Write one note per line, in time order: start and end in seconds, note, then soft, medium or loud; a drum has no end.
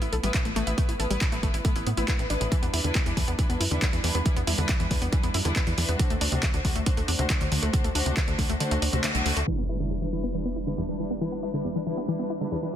0.02 0.09 A1 medium
0.02 0.06 E4 medium
0.02 closed hi-hat soft
0.12 0.20 B1 loud
0.12 0.17 A4 medium
0.12 closed hi-hat medium
0.23 0.30 A1 medium
0.23 0.26 G3 medium
0.23 0.31 A3 medium
0.23 0.31 B3 medium
0.23 0.31 E4 medium
0.23 0.31 B4 medium
0.23 closed hi-hat soft
0.34 0.38 A2 loud
0.34 0.42 A3 medium
0.34 0.42 B3 medium
0.34 0.42 E4 medium
0.34 0.42 B4 medium
0.34 kick loud
0.34 clap loud
0.34 closed hi-hat medium
0.45 0.52 A1 medium
0.45 0.48 A3 medium
0.45 0.53 A3 medium
0.45 0.53 B3 medium
0.45 0.53 E4 medium
0.45 0.53 B4 medium
0.45 closed hi-hat soft
0.56 0.63 A1 medium
0.56 0.62 A3 loud
0.56 0.71 A3 medium
0.56 0.71 B3 medium
0.56 0.71 E4 medium
0.56 0.71 B4 medium
0.56 closed hi-hat medium
0.67 0.74 A1 medium
0.67 0.71 E4 medium
0.67 closed hi-hat soft
0.78 0.80 A3 loud
0.78 0.93 A3 medium
0.78 0.93 B3 medium
0.78 0.93 E4 medium
0.78 0.93 B4 medium
0.78 kick loud
0.78 closed hi-hat medium
0.89 0.96 A1 medium
0.89 0.93 E4 medium
0.89 closed hi-hat soft
0.99 1.07 A1 medium
0.99 1.07 A3 medium
0.99 1.07 B3 medium
0.99 1.07 E4 medium
0.99 1.04 A4 medium
0.99 1.07 B4 medium
0.99 closed hi-hat medium
1.10 1.17 A1 medium
1.10 1.13 G3 medium
1.10 1.26 A3 medium
1.10 1.26 B3 medium
1.10 1.26 E4 medium
1.10 1.26 B4 medium
1.10 closed hi-hat soft
1.21 1.25 A2 loud
1.21 kick loud
1.21 clap loud
1.21 closed hi-hat medium
1.32 1.39 A1 medium
1.32 1.35 A3 medium
1.32 1.40 A3 medium
1.32 1.40 B3 medium
1.32 1.40 E4 medium
1.32 1.40 B4 medium
1.32 closed hi-hat soft
1.43 1.50 A1 medium
1.43 1.58 A3 medium
1.43 1.49 A3 loud
1.43 1.58 B3 medium
1.43 1.58 E4 medium
1.43 1.58 B4 medium
1.43 kick medium
1.43 closed hi-hat medium
1.54 1.61 A1 medium
1.54 1.58 E4 medium
1.54 closed hi-hat soft
1.65 1.67 A3 loud
1.65 1.80 A3 medium
1.65 1.80 B3 medium
1.65 1.80 E4 medium
1.65 1.80 B4 medium
1.65 kick loud
1.65 closed hi-hat medium
1.76 1.83 A1 medium
1.76 1.80 E4 medium
1.76 closed hi-hat soft
1.86 1.94 A2 medium
1.86 1.91 B3 medium
1.86 closed hi-hat medium
1.97 2.04 A1 medium
1.97 2.05 A3 medium
1.97 2.05 B3 medium
1.97 2.04 E4 medium
1.97 2.05 E4 medium
1.97 2.05 B4 medium
1.97 closed hi-hat soft
2.08 2.16 A3 medium
2.08 2.16 B3 medium
2.08 2.12 E4 loud
2.08 2.16 E4 medium
2.08 2.16 B4 medium
2.08 kick loud
2.08 clap loud
2.08 closed hi-hat medium
2.19 2.26 A1 medium
2.19 2.23 A2 medium
2.19 2.27 A3 medium
2.19 2.27 B3 medium
2.19 2.27 E4 medium
2.19 2.27 B4 medium
2.19 closed hi-hat soft
2.30 2.37 A1 medium
2.30 2.45 A3 medium
2.30 2.45 B3 medium
2.30 2.36 D4 medium
2.30 2.45 E4 medium
2.30 2.45 B4 medium
2.30 closed hi-hat medium
2.41 2.48 A1 medium
2.41 2.43 A2 medium
2.41 closed hi-hat soft
2.52 2.54 E3 loud
2.52 2.67 G3 medium
2.52 2.67 D4 medium
2.52 2.67 E4 medium
2.52 2.67 B4 medium
2.52 kick loud
2.52 closed hi-hat medium
2.62 2.70 E2 medium
2.62 2.67 B3 medium
2.62 closed hi-hat soft
2.73 2.80 E2 medium
2.73 2.81 G3 medium
2.73 2.81 D4 medium
2.73 2.81 E4 medium
2.73 2.78 E4 medium
2.73 2.81 B4 medium
2.73 open hi-hat loud
2.84 2.91 E2 medium
2.84 2.87 D3 medium
2.84 3.00 G3 medium
2.84 3.00 D4 medium
2.84 2.99 E4 medium
2.84 2.99 B4 medium
2.84 closed hi-hat soft
2.95 2.99 E2 loud
2.95 kick loud
2.95 clap loud
2.95 closed hi-hat medium
3.06 3.13 E2 medium
3.06 3.08 E3 medium
3.06 3.14 G3 medium
3.06 3.14 D4 medium
3.06 3.14 E4 medium
3.06 3.14 B4 medium
3.06 closed hi-hat soft
3.17 3.24 E2 medium
3.17 3.23 E3 medium
3.17 3.32 G3 medium
3.17 3.32 D4 medium
3.17 3.32 E4 medium
3.17 3.32 B4 medium
3.17 kick medium
3.17 open hi-hat loud
3.28 3.35 E2 medium
3.28 3.32 B3 medium
3.28 closed hi-hat soft
3.39 3.41 E3 loud
3.39 3.54 G3 medium
3.39 3.54 D4 medium
3.39 3.54 E4 medium
3.39 3.54 B4 medium
3.39 kick loud
3.39 closed hi-hat medium
3.49 3.57 E2 medium
3.49 3.54 B3 medium
3.49 closed hi-hat soft
3.60 3.67 F#2 loud
3.60 3.64 E4 medium
3.60 open hi-hat medium
3.71 3.78 E2 medium
3.71 3.74 D3 medium
3.71 3.79 G3 medium
3.71 3.79 D4 medium
3.71 3.79 E4 medium
3.71 3.79 B4 medium
3.71 closed hi-hat soft
3.82 3.86 E2 loud
3.82 3.90 G3 medium
3.82 3.90 D4 medium
3.82 3.90 E4 medium
3.82 3.90 B4 medium
3.82 kick loud
3.82 clap loud
3.82 closed hi-hat medium
3.93 4.00 E2 medium
3.93 3.95 E3 medium
3.93 4.01 G3 medium
3.93 4.01 D4 medium
3.93 4.01 E4 medium
3.93 4.01 B4 medium
3.93 closed hi-hat soft
4.04 4.11 E2 loud
4.04 4.10 E3 medium
4.04 4.19 G3 medium
4.04 4.19 D4 medium
4.04 4.19 E4 medium
4.04 4.19 B4 medium
4.04 open hi-hat loud
4.15 4.22 E2 medium
4.15 4.19 B3 medium
4.15 closed hi-hat soft
4.26 4.28 E3 loud
4.26 4.41 G3 medium
4.26 4.41 D4 medium
4.26 4.41 E4 medium
4.26 4.41 B4 medium
4.26 kick loud
4.26 closed hi-hat medium
4.36 4.44 E2 medium
4.36 4.41 B3 medium
4.36 closed hi-hat soft
4.47 4.54 E2 medium
4.47 4.55 G3 medium
4.47 4.55 D4 medium
4.47 4.51 E4 medium
4.47 4.55 E4 medium
4.47 4.55 B4 medium
4.47 open hi-hat loud
4.58 4.65 E2 medium
4.58 4.61 D3 medium
4.58 4.74 G3 medium
4.58 4.74 D4 medium
4.58 4.74 E4 medium
4.58 4.74 B4 medium
4.58 closed hi-hat soft
4.69 4.73 E2 loud
4.69 kick loud
4.69 clap loud
4.69 closed hi-hat medium
4.80 4.87 E2 medium
4.80 4.82 E3 medium
4.80 4.88 G3 medium
4.80 4.88 D4 medium
4.80 4.88 E4 medium
4.80 4.88 B4 medium
4.80 closed hi-hat soft
4.91 4.98 E2 loud
4.91 4.97 E3 medium
4.91 5.06 G3 medium
4.91 5.06 D4 medium
4.91 5.06 E4 medium
4.91 5.06 B4 medium
4.91 kick medium
4.91 open hi-hat loud
5.02 5.09 E2 medium
5.02 5.06 B3 medium
5.02 closed hi-hat soft
5.12 5.15 E3 loud
5.12 5.28 G3 medium
5.12 5.28 D4 medium
5.12 5.28 E4 medium
5.12 5.28 B4 medium
5.12 kick loud
5.12 closed hi-hat medium
5.23 5.30 E2 medium
5.23 5.28 B3 medium
5.23 closed hi-hat soft
5.34 5.41 F#2 medium
5.34 5.38 E4 medium
5.34 open hi-hat medium
5.45 5.52 E2 medium
5.45 5.48 D3 medium
5.45 5.53 G3 medium
5.45 5.53 D4 medium
5.45 5.53 E4 medium
5.45 5.53 B4 medium
5.45 closed hi-hat soft
5.56 5.60 E2 loud
5.56 5.64 G3 medium
5.56 5.64 D4 medium
5.56 5.64 E4 medium
5.56 5.64 B4 medium
5.56 kick loud
5.56 clap loud
5.56 closed hi-hat medium
5.67 5.74 E2 medium
5.67 5.69 E3 medium
5.67 5.75 G3 medium
5.67 5.75 D4 medium
5.67 5.75 E4 medium
5.67 5.75 B4 medium
5.67 closed hi-hat soft
5.78 5.85 E2 loud
5.78 5.84 E3 medium
5.78 5.93 G3 medium
5.78 5.93 D4 medium
5.78 5.93 E4 medium
5.78 5.93 B4 medium
5.78 open hi-hat medium
5.89 5.96 E2 medium
5.89 5.93 B3 medium
5.89 closed hi-hat medium
5.99 6.02 D3 loud
5.99 6.15 A3 medium
5.99 6.15 D4 medium
5.99 6.15 F#4 medium
5.99 6.15 C5 medium
5.99 kick loud
5.99 closed hi-hat medium
6.10 6.17 D2 medium
6.10 6.14 A3 medium
6.10 closed hi-hat medium
6.21 6.28 D2 loud
6.21 6.29 A3 medium
6.21 6.29 D4 medium
6.21 6.25 D4 medium
6.21 6.29 F#4 medium
6.21 6.29 C5 medium
6.21 open hi-hat loud
6.32 6.39 D2 medium
6.32 6.35 C3 medium
6.32 6.47 A3 medium
6.32 6.47 D4 medium
6.32 6.47 F#4 medium
6.32 6.47 C5 medium
6.32 closed hi-hat medium
6.43 6.47 D2 loud
6.43 kick loud
6.43 clap loud
6.43 closed hi-hat loud
6.54 6.61 D2 medium
6.54 6.56 D3 medium
6.54 6.61 A3 medium
6.54 6.61 D4 medium
6.54 6.61 F#4 medium
6.54 6.61 C5 medium
6.54 closed hi-hat medium
6.65 6.72 D2 loud
6.65 6.71 D3 medium
6.65 6.80 A3 medium
6.65 6.80 D4 medium
6.65 6.80 F#4 medium
6.65 6.80 C5 medium
6.65 kick medium
6.65 open hi-hat loud
6.76 6.83 D2 medium
6.76 6.80 A3 medium
6.76 closed hi-hat medium
6.86 6.89 D3 loud
6.86 7.02 A3 medium
6.86 7.02 D4 medium
6.86 7.02 F#4 medium
6.86 7.02 C5 medium
6.86 kick loud
6.86 closed hi-hat medium
6.97 7.04 D2 medium
6.97 7.01 A3 medium
6.97 closed hi-hat soft
7.08 7.15 E2 loud
7.08 7.12 D4 medium
7.08 open hi-hat medium
7.19 7.26 D2 medium
7.19 7.21 C3 medium
7.19 7.27 A3 medium
7.19 7.27 D4 medium
7.19 7.27 F#4 medium
7.19 7.27 C5 medium
7.19 closed hi-hat soft
7.30 7.34 D2 loud
7.30 7.38 A3 medium
7.30 7.38 D4 medium
7.30 7.38 F#4 medium
7.30 7.38 C5 medium
7.30 kick loud
7.30 clap loud
7.30 closed hi-hat medium
7.41 7.48 D2 medium
7.41 7.43 D3 medium
7.41 7.48 A3 medium
7.41 7.48 D4 medium
7.41 7.48 F#4 medium
7.41 7.48 C5 medium
7.41 closed hi-hat medium
7.52 7.59 D2 loud
7.52 7.58 D3 medium
7.52 7.67 A3 medium
7.52 7.67 D4 medium
7.52 7.67 F#4 medium
7.52 7.67 C5 medium
7.52 open hi-hat loud
7.62 7.70 D2 medium
7.62 7.67 A3 medium
7.62 closed hi-hat medium
7.73 7.76 D3 loud
7.73 7.89 A3 medium
7.73 7.89 D4 medium
7.73 7.89 F#4 medium
7.73 7.89 C5 medium
7.73 kick loud
7.73 closed hi-hat medium
7.84 7.91 D2 medium
7.84 7.88 A3 medium
7.84 closed hi-hat medium
7.95 8.02 D2 loud
7.95 8.03 A3 medium
7.95 7.99 D4 medium
7.95 8.03 D4 medium
7.95 8.03 F#4 medium
7.95 8.03 C5 medium
7.95 open hi-hat loud
8.06 8.13 D2 medium
8.06 8.08 C3 medium
8.06 8.21 A3 medium
8.06 8.21 D4 medium
8.06 8.21 F#4 medium
8.06 8.21 C5 medium
8.06 closed hi-hat medium
8.17 8.21 D2 loud
8.17 kick loud
8.17 clap loud
8.17 closed hi-hat loud
8.28 8.35 D2 medium
8.28 8.30 D3 medium
8.28 8.35 A3 medium
8.28 8.35 D4 medium
8.28 8.35 F#4 medium
8.28 8.35 C5 medium
8.28 closed hi-hat medium
8.39 8.46 D2 loud
8.39 8.45 D3 medium
8.39 8.54 A3 medium
8.39 8.54 D4 medium
8.39 8.54 F#4 medium
8.39 8.54 C5 medium
8.39 kick medium
8.39 open hi-hat loud
8.49 8.57 D2 medium
8.49 8.54 A3 medium
8.49 closed hi-hat medium
8.60 8.63 D3 loud
8.60 8.76 A3 medium
8.60 8.76 D4 medium
8.60 8.76 F#4 medium
8.60 8.76 C5 medium
8.60 closed hi-hat medium
8.71 8.78 D2 medium
8.71 8.75 A3 medium
8.71 closed hi-hat medium
8.82 8.89 D2 loud
8.82 8.86 D4 medium
8.82 open hi-hat medium
8.93 9.00 D2 medium
8.93 8.95 C3 medium
8.93 9.01 A3 medium
8.93 9.01 D4 medium
8.93 9.01 F#4 medium
8.93 9.01 C5 medium
8.93 closed hi-hat medium
9.04 9.08 D2 loud
9.04 9.12 A3 medium
9.04 9.12 D4 medium
9.04 9.12 F#4 medium
9.04 9.12 C5 medium
9.04 clap loud
9.04 closed hi-hat medium
9.15 9.22 C2 medium
9.15 9.17 D3 medium
9.15 9.22 A3 medium
9.15 9.22 D4 medium
9.15 9.22 F#4 medium
9.15 9.22 C5 medium
9.15 closed hi-hat medium
9.26 9.33 D2 loud
9.26 9.32 D3 medium
9.26 9.41 A3 medium
9.26 9.41 D4 medium
9.26 9.41 F#4 medium
9.26 9.41 C5 medium
9.26 open hi-hat loud
9.36 9.44 D2 medium
9.36 9.41 A3 medium
9.36 closed hi-hat medium
9.47 9.50 E3 medium
9.47 9.63 G3 medium
9.47 9.63 D4 medium
9.47 9.63 E4 medium
9.47 9.63 B4 medium
9.47 impact medium
9.58 9.62 B3 medium
9.69 9.77 G3 medium
9.69 9.77 D4 medium
9.69 9.77 E4 medium
9.69 9.73 E4 medium
9.69 9.77 B4 medium
9.80 9.82 D3 medium
9.80 9.95 G3 medium
9.80 9.95 D4 medium
9.80 9.95 E4 medium
9.80 9.95 B4 medium
9.91 9.95 E2 medium
10.02 10.04 E3 medium
10.02 10.09 G3 medium
10.02 10.09 D4 medium
10.02 10.09 E4 medium
10.02 10.09 B4 medium
10.13 10.19 E3 medium
10.13 10.28 G3 medium
10.13 10.28 D4 medium
10.13 10.28 E4 medium
10.13 10.28 B4 medium
10.23 10.28 B3 medium
10.34 10.37 E3 medium
10.34 10.49 G3 medium
10.34 10.49 D4 medium
10.34 10.49 E4 medium
10.34 10.49 B4 medium
10.45 10.49 B3 medium
10.56 10.60 E4 medium
10.67 10.69 D3 medium
10.67 10.74 G3 medium
10.67 10.74 D4 medium
10.67 10.74 E4 medium
10.67 10.74 B4 medium
10.78 10.82 E2 medium
10.78 10.85 G3 medium
10.78 10.85 D4 medium
10.78 10.85 E4 medium
10.78 10.85 B4 medium
10.89 10.91 E3 medium
10.89 10.96 G3 medium
10.89 10.96 D4 medium
10.89 10.96 E4 medium
10.89 10.96 B4 medium
10.99 11.06 E3 medium
10.99 11.15 G3 medium
10.99 11.15 D4 medium
10.99 11.15 E4 medium
10.99 11.15 B4 medium
11.10 11.15 B3 medium
11.21 11.24 E3 medium
11.21 11.37 G3 medium
11.21 11.37 D4 medium
11.21 11.37 E4 medium
11.21 11.37 B4 medium
11.32 11.36 B3 medium
11.43 11.51 G3 medium
11.43 11.51 D4 medium
11.43 11.47 E4 medium
11.43 11.51 E4 medium
11.43 11.51 B4 medium
11.54 11.56 D3 medium
11.54 11.69 G3 medium
11.54 11.69 D4 medium
11.54 11.69 E4 medium
11.54 11.69 B4 medium
11.65 11.69 E2 loud
11.75 11.78 E3 medium
11.75 11.83 G3 medium
11.75 11.83 D4 medium
11.75 11.83 E4 medium
11.75 11.83 B4 medium
11.86 11.93 E3 medium
11.86 12.02 G3 medium
11.86 12.02 D4 medium
11.86 12.02 E4 medium
11.86 12.02 B4 medium
11.97 12.01 B3 medium
12.08 12.11 E3 loud
12.08 12.24 G3 medium
12.08 12.23 D4 medium
12.08 12.24 E4 medium
12.08 12.24 B4 medium
12.19 12.23 B3 medium
12.30 12.34 E4 medium
12.41 12.43 D3 medium
12.41 12.48 G3 medium
12.41 12.48 D4 medium
12.41 12.48 E4 medium
12.41 12.48 B4 medium
12.52 12.56 E2 loud
12.52 12.59 G3 medium
12.52 12.59 D4 medium
12.52 12.59 E4 medium
12.52 12.59 B4 medium
12.63 12.65 E3 medium
12.63 12.70 G3 medium
12.63 12.70 D4 medium
12.63 12.70 E4 medium
12.63 12.70 B4 medium